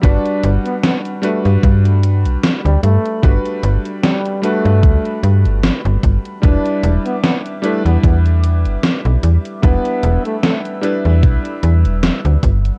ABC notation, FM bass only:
X:1
M:4/4
L:1/16
Q:"Swing 16ths" 1/4=75
K:Em
V:1 name="FM bass" clef=bass
G,,, z G,,, z4 G,, G,,3 B,,, z D,, G,, z | G,,, z G,,, z4 G,, D,, z G,, G,,, z G,,, G,,, z | E,,, z E,,, z4 E,, E,,3 G,,, z B,,, E,, z | E,,, z E,,, z4 E,, B,,, z E,, E,,, z D,, G,,, z |]